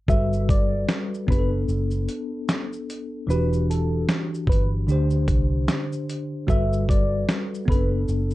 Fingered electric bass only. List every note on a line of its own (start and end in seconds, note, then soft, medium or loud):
0.08 0.84 G1 loud
1.28 1.66 F#1 medium
1.68 2.06 F#1 medium
3.28 4.04 E1 medium
4.47 4.85 G1 loud
4.88 5.26 D2 medium
5.28 5.66 C2 medium
6.48 7.24 G1 loud
7.68 8.06 F#1 loud
8.09 8.34 F#1 medium